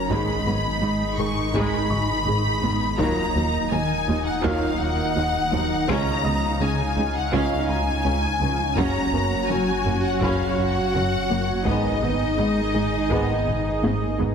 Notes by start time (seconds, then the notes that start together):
Already playing: F#1 F#3 A#4 A#5
0.09 G#1 G#2 D#3 G#3 D#4 G#4 D#5 B5, taiko
0.46 G#1 G#2 F#3 B3
0.82 G#1 G#2 G#3 D#4
1.18 G#1 G#2 D#3 G#4 C#6
1.53 G#1 G#2 D#3 G#3 D#4 B5, taiko
1.90 G#2 C#6, taiko mid
2.25 G#1 G#2 G#3 G#4, taiko low-mid
2.61 G#1 G#2 D#3 B3, taiko low
2.98 D#1 D#2 F#2 D#3 F#3 A#3 D#4 F4 A#5, taiko
3.35 D#2 F3 F#3
3.71 D#2 D#3 F#3 A#3 G#5
4.07 D#2 F3 D#4
4.25 F#5
4.43 D#2 F#2 D#3 F#3 A#3 D#4 F4 F5 F6, taiko
4.79 D#2 F#5
5.15 D#2 F#3 D#4
5.51 D#2 F3 F#3
5.87 C#2 G#2 C#3 G#3 C#4 F4 F5 A#5, taiko
6.23 C#2 F3 B3 D#5 D#6
6.60 C#2 C#3 G#3 C#4 G#5
6.96 C#2 G#3 C#4
7.14 F#5
7.32 C#2 G#2 C#3 G#3 C#4 F4 F5, taiko
7.68 C#2 G#5 A#5
8.05 C#2 C#4
8.40 C#2 F3 G#3
8.75 F#1 F#2 C#3 F#3 C#4 F#4 C#5 A#5, taiko
9.12 F#1 F#2 A#3 B3
9.49 F#1 F#2 F#3 C#4 G#5
9.85 F#1 F#2 A#3 F#4
10.04 F#5
10.20 F#1 F#2 C#3 F#3 C#4 F#4 C#5 F5 B5, taiko
10.57 F#2 F#5
10.94 F#1 F#2 C#4 F#4
11.30 F#1 F#2 A#3
11.65 G#1 G#2 D#3 G#3 B3 D#4 G#4 D#5, taiko
12.01 G#1 G#2 A#3 B3
12.38 G#1 G#2 G#3 B3 D#4
12.73 G#1 G#2 G#3 G#4
13.09 G#1 G#2 D#3 G#3 B3 D#4, taiko
13.47 G#2, taiko low-mid
13.83 G#1 G#2 B3 G#4, taiko high
14.18 G#1 G#2 G#3 B3, taiko low